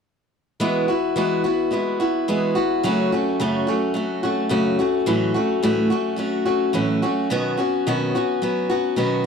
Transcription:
0.60 E3 G#3 B3 E4 F#4
0.88 B3 E4 F#4
1.16 E3 G#3 B3 E4 F#4
1.44 B3 E4 F#4
1.71 G#3 B3 E4 F#4
2.00 B3 E4 F#4
2.28 E3 G#3 B3 E4 F#4
2.55 B3 E4 F#4
2.83 F#2 C#3 F#3 A3 C#4 F#4
3.12 F#3 A3 C#4 F#4
3.40 F#2 C#3 F#3 A3 C#4 F#4
3.67 F#3 A3 C#4 F#4
3.94 F#3 A3 C#4 F#4
4.23 F#3 A3 C#4 F#4
4.49 F#2 C#3 F#3 A3 C#4 F#4
4.79 F#3 A3 C#4 F#4
5.06 A2 E3 F#3 A3 C#4 F#4
5.34 F#3 A3 C#4 F#4
5.63 A2 E3 F#3 A3 C#4 F#4
5.90 F#3 A3 C#4 F#4
6.16 F#3 A3 C#4 F#4
6.45 F#3 A3 C#4 F#4
6.73 A2 E3 F#3 A3 C#4 F#4
7.02 F#3 A3 C#4 F#4
7.30 B2 D#3 F#3 B3 C#4 F#4
7.57 F#3 B3 C#4 F#4
7.87 B2 D#3 F#3 B3 C#4 F#4
8.15 F#3 B3 C#4 F#4
8.42 F#3 B3 C#4 F#4
8.70 F#3 B3 C#4 F#4
8.96 B2 D#3 F#3 B3 C#4 F#4

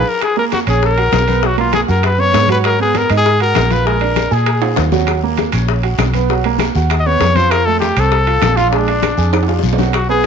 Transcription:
Already playing: B4
0.09 A#4
0.21 G#4, high bongo, high conga, high timbale, long guiro
0.37 A#3 A#4, high conga
0.52 F#4, high bongo, high conga, high timbale, low timbale, short guiro
0.67 A#1 C#4 G#4 C#5, high conga, high timbale, short guiro
0.82 A#4, high bongo, high conga, long guiro
0.98 F#4 F#5, high conga, high timbale
1.12 B1, high bongo, low bongo, high conga, high timbale, low timbale, short guiro
1.28 B3 B4, high conga, high timbale, short guiro
1.42 F#3 F#4, high bongo, high conga, long guiro
1.57 A#3 F4 A#4, high conga, high timbale
1.73 G#4, high bongo, high conga, high timbale, low timbale, short guiro
1.88 F#2 F#4 A#4 F#5, high bongo, high conga, short guiro
2.03 B4, high bongo, high conga, high timbale, long guiro
2.18 B3 B4 C#5, high bongo, high conga
2.33 G#2, high bongo, low bongo, high conga, high timbale, low timbale, short guiro
2.47 F#3 F#4, high bongo, high conga, high timbale, short guiro
2.52 B4
2.64 A#4, high bongo, high timbale, long guiro
2.79 B3 G#4 B4, high conga
2.94 A#4, high bongo, high conga, high timbale, low timbale, short guiro
3.10 G#2 D#4 D#5, high conga, high timbale, short guiro
3.17 G#4
3.25 high bongo, high conga, long guiro
3.40 F#4 A#4 F#5, high conga, high timbale
3.55 A#1, high bongo, low bongo, high conga, high timbale, low timbale, short guiro
3.70 F4 B4 F5, high conga, high timbale, short guiro
3.86 G#3 G#4 A#4, high bongo, high conga, long guiro
4.01 D4 D5, high conga, high timbale
4.16 high bongo, high conga, high timbale, low timbale, short guiro
4.31 A#2 G#4 G#5, high bongo, high conga, short guiro
4.46 high bongo, high conga, high timbale, long guiro
4.62 F4 F5, high bongo, high conga, high timbale
4.76 D#2, high bongo, low bongo, high conga, high timbale, short guiro
4.92 F#3 F#4, high bongo, high conga, low timbale, short guiro
5.07 high bongo, high conga, high timbale, long guiro, claves
5.23 A#3 A#4, high conga
5.37 high bongo, high conga, high timbale, low timbale, short guiro
5.52 A#1 C#4 C#5, high conga, high timbale, short guiro, claves
5.67 high bongo, high conga, long guiro
5.83 F#4 F#5, high conga, high timbale
5.98 B1, high bongo, low bongo, high conga, high timbale, low timbale, short guiro, claves
6.13 B3 B4, high conga, high timbale, short guiro
6.29 F#3 F#4, high bongo, high conga, long guiro
6.44 A#3 A#4, high conga, high timbale
6.59 high bongo, high conga, high timbale, low timbale, short guiro, claves
6.75 D#2 F#4 F#5, high bongo, high conga, short guiro
6.89 high bongo, high conga, high timbale, long guiro, claves
6.99 D#5
7.05 B3 B4 C#5, high bongo, high conga
7.20 F2, high bongo, low bongo, high conga, high timbale, low timbale, short guiro
7.36 F3 F4 C5, high bongo, high conga, high timbale, short guiro
7.51 A#4, high bongo, high conga, high timbale, long guiro, claves
7.65 A3 A4, high conga
7.80 G4, high bongo, high conga, high timbale, low timbale, short guiro
7.97 C2 C4 A4 C5, high conga, high timbale, short guiro, claves
8.11 high bongo, high conga, long guiro
8.27 F4 F5, high conga, high timbale
8.42 A#1, high bongo, low bongo, high conga, high timbale, low timbale, short guiro, claves
8.56 F4 F5, high conga, high timbale, short guiro
8.70 G#3 D4 G#4, high bongo, high conga, long guiro
8.87 D4 D5, high conga, high timbale
9.02 high bongo, high conga, high timbale, low timbale, short guiro, claves
9.17 F2 G#4 G#5, high bongo, high conga, short guiro
9.33 high bongo, high conga, high timbale, long guiro, claves
9.43 high timbale
9.48 F4 F5, high bongo, high conga
9.59 high bongo, short guiro
9.63 B1, high conga
9.73 low timbale
9.78 F#3 F#4, low bongo, high conga, short guiro
9.83 low timbale
9.93 F#4, high bongo, high timbale, long guiro, claves
10.09 B3 G#4 B4 B5, high bongo, high conga

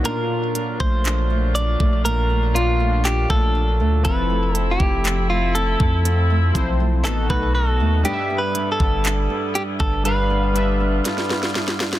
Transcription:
Already playing: F#3 A#3 D#4
0.03 A#2 D3 A#3 D4 F4 A#4, closed hi-hat
0.55 D4, closed hi-hat
0.80 A#1 A3 C5, kick
1.05 D4, clap, closed hi-hat
1.30 A3
1.55 D4 D5, closed hi-hat
1.80 A#1 A3, kick
2.05 A#2 A#4, closed hi-hat
2.30 A3
2.53 A#2 A#3 D4 F4, closed hi-hat
2.80 A3
3.05 D4 G4, clap, closed hi-hat
3.30 A#1 A3 A4, kick, cross-stick
3.55 D4
3.80 D2 A3
4.03 F1 F2 F3 C4 E4 A4 B4, kick, closed hi-hat
4.30 A3
4.55 C4 A4, closed hi-hat
4.71 G4
4.80 F1 A3, kick
5.05 C4, clap, closed hi-hat
5.30 A3 F4
5.55 C4 A4, closed hi-hat
5.80 F2 A3, kick
6.05 F2, closed hi-hat
6.30 A3
6.53 B1 F3 C4 E4 C5, kick, closed hi-hat
6.80 A3
7.03 A1 B2 D#3 B3 D#4 F#4 A4, clap, closed hi-hat
7.30 B1 A3 B4, kick, cross-stick
7.55 D#4 A4
7.80 D#2 A3
8.03 G2 D3 G3 D4 E4 G4 B4 D#5, closed hi-hat
8.13 E5
8.30 B3
8.38 B4
8.55 D4, closed hi-hat
8.72 A4
8.80 G1 B3, kick
9.05 D4, clap, closed hi-hat
9.30 B3
9.55 D4 G4, closed hi-hat
9.80 G1 B3 A4, kick
10.03 G2 G3 D4 F4 B4 F5, closed hi-hat
10.30 B3
10.53 G3 D4 B4 E5, closed hi-hat
10.80 B3
11.05 D4, snare, closed hi-hat
11.18 snare
11.30 B3, snare
11.43 snare
11.55 D4, snare
11.68 snare
11.80 B3, snare
11.93 snare

